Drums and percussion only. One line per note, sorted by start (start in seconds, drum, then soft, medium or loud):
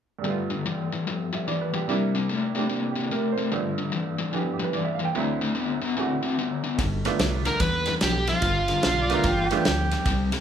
6.79 kick medium
6.79 snare soft
6.79 ride medium
7.05 snare soft
7.05 ride medium
7.19 snare medium
7.19 ride medium
7.45 snare soft
7.45 ride medium
7.60 kick loud
7.60 snare soft
7.60 ride medium
7.86 snare soft
7.86 ride medium
8.01 snare loud
8.01 ride medium
8.27 snare soft
8.27 ride medium
8.42 kick medium
8.42 snare soft
8.42 ride medium
8.68 snare soft
8.68 ride medium
8.83 snare medium
8.83 ride medium
9.10 snare soft
9.10 ride medium
9.24 kick loud
9.24 snare soft
9.24 ride medium
9.51 snare soft
9.51 ride medium
9.65 snare loud
9.65 ride medium
9.91 snare soft
9.91 ride medium
10.06 kick loud
10.06 snare soft
10.06 ride medium
10.32 snare soft
10.32 ride medium